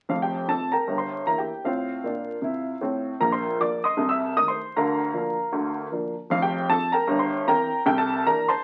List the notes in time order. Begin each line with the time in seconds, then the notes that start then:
0.09 F1 F2 F5
0.22 G4 G5
0.48 C3 C4 F4 A4 A5
0.72 A#4 G5 A#5
0.87 G1 G2
0.98 C5 C6
1.26 E3 A#3 E4 A#5
1.38 G4 G5
1.64 A2 C4 F4 C5 F5
2.04 A#2 D4
2.42 C3 E4
2.81 A2 C4
3.20 A#1 A#2 A#5
3.32 C5 C6
3.60 F3 A#3 D4 D5 D6
3.84 D#5 C6 D#6
3.97 C2 C3
4.09 E5 E6
4.36 D#3 A3 D#4 D#6
4.48 C5 C6
4.76 D2 D3 A#4 F5 A#5
5.13 F3 A#3 D4
5.52 D2 D3
5.92 F3 A#3 D4
6.30 F1 F2 F5
6.42 G4 G5
6.69 F3 C4 A4 A5
6.92 A#4 G5 A#5
7.07 G1 G2
7.19 C5 C6
7.47 E3 C4 A#4 G5 A#5
7.86 C2 C3 G5
7.98 A4 A5
8.26 E3 A#3 D4 A#4 A#5
8.49 C5 A5 C6